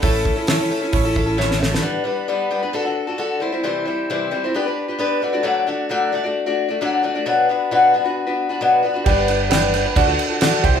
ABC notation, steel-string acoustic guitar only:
X:1
M:4/4
L:1/16
Q:1/4=133
K:D
V:1 name="Steel-string acoustic guitar"
[A,,A,CEA]3 [CEA] [A,,A,CEA] [CEA] [A,CEA] [CEA]2 [CEA] [A,CEA] [CEA] [A,,A,CEA]2 [A,CEA] [CEA] | [G,B,DB]2 [G,B,DB]2 [G,B,DB]2 [G,B,DB] [B,DB] [D,DFA] [DFA]2 [DFA] [D,DFA]2 [G,=CE=c] [G,CEc] | [=C,E,G,=CE=c]2 [G,CEc]2 [C,E,G,CEc]2 [G,CEc] [G,CEc] [B,DGB] [DGB]2 [DGB] [B,DGB]2 [A,DFd] [A,DFd] | [D,F,A,DFd]2 [A,DFd]2 [D,F,A,DFd]2 [A,DFd] [A,DFd]2 [A,DFd]2 [A,DFd] [D,F,A,DFd]2 [A,DFd] [A,DFd] |
[B,,F,B,DFB]2 [B,DFB]2 [B,,F,B,DFB]2 [B,DFB] [B,DFB]2 [B,DFB]2 [B,DFB] [B,,F,B,DFB]2 [B,DFB] [B,DFB] | [G,B,DB]2 [G,B,DB]2 [G,B,DB]2 [G,B,DB] [B,DB] [D,DFA] [DFA]2 [DFA] [D,DFA]2 [G,=CE=c] [G,CEc] |]